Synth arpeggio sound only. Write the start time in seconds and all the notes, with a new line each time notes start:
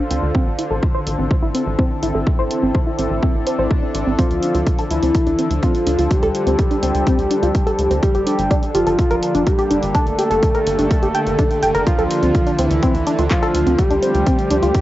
0.11 C4
0.35 C4
0.59 E4
0.71 A4
0.95 C5
1.19 C4
1.43 E4
1.55 C4
1.79 C4
2.03 E4
2.15 A4
2.39 C5
2.63 C4
2.87 E4
2.99 C4
3.23 C4
3.47 C5
3.59 C5
3.83 C4
4.07 C4
4.19 C4
4.43 D4
4.55 F4
4.79 A4
5.03 C4
5.27 D4
5.39 C4
5.63 C4
5.87 D4
5.99 F4
6.23 A4
6.47 C4
6.71 D4
6.83 C4
7.07 C4
7.31 D4
7.43 F4
7.67 A4
7.91 C4
8.15 G4
8.27 D4
8.51 D4
8.75 G4
8.87 A4
9.11 A#4
9.35 D4
9.59 G4
9.71 D4
9.95 D4
10.19 G4
10.31 A4
10.55 A#4
10.79 D4
11.03 G4
11.15 G5
11.39 D4
11.63 G5
11.75 A#4
11.99 A4
12.23 C4
12.47 D4
12.59 C4
12.83 C4
13.07 D4
13.19 F4
13.43 A4
13.67 C4
13.91 D4
14.03 C4
14.27 C4
14.51 D4
14.63 F4